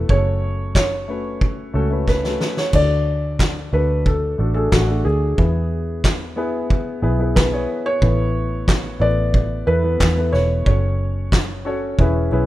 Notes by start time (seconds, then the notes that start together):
Already playing: A3 B3 E4 F#4 A4 B4
0.09 F#1 A3 C#4 F#4 G#4 C#5, kick
0.17 A4
0.75 C#5, kick, snare, clap
1.08 A3 C#4 F#4 B4
1.41 kick
1.73 C#2 A3 C#4 F#4 A4
1.91 A3 C#4 F#4 B4
2.07 B4, kick, snare
2.23 A3 C#4 F#4 A4, snare
2.41 snare
2.57 C#5, snare
2.73 D2 D3 A3 D4 E4 A4 D5, kick, splash
2.81 F#4
3.39 kick, snare, clap
3.72 D2 A3 D4 F#4 A4 B4
4.06 A4, kick
4.38 A1 A3 D4 F#4 A4
4.54 A3 D4 F#4 G#4 A4
4.72 A1 F#4, kick, snare, clap
4.87 A3 D4 F#4 A4
5.05 D2 G#4
5.37 E2 E3 B3 E4 G#4 B4, kick
6.04 kick, snare, clap
6.36 B3 E4 G#4 B4
6.70 kick
7.02 B1 B3 E4 G#4 B4
7.19 B3 E4 G#4 B4
7.36 B4, kick, snare, clap
7.52 B3 E4 G#4 C#5
7.86 C#5
8.01 A1 A2 B3 E4 A4 B4, kick
8.68 kick, snare, clap
9.00 A1 B3 E4 A4 B4 D5
9.34 kick
9.66 E2 B3 E4 A4 B4
9.83 B3 E4 A4 B4
10.00 E2, kick, snare, clap
10.17 B3 E4 A4 B4
10.32 E1 C#5, snare
10.65 F#1 C#4 F#4 A4 C#5, kick
11.32 kick, snare, clap
11.65 C#4 F#4 A4 C#5
11.99 E1 E3 C#4 E4 G#4 B4, kick
12.31 B1 C#4 E4 G#4 B4 E5